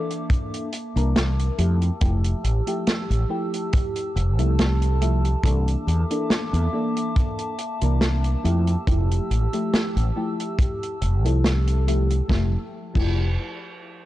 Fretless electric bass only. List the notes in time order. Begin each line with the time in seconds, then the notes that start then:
0.96 C2
1.58 F2
2.01 F1
2.44 A1
3.10 A1
4.16 F1
4.39 C2
5.43 C2
5.87 E2
6.53 E2
7.82 C2
8.44 F2
8.87 F1
9.30 A1
9.96 A1
11.02 F1
11.24 C2
12.29 F1
12.95 F1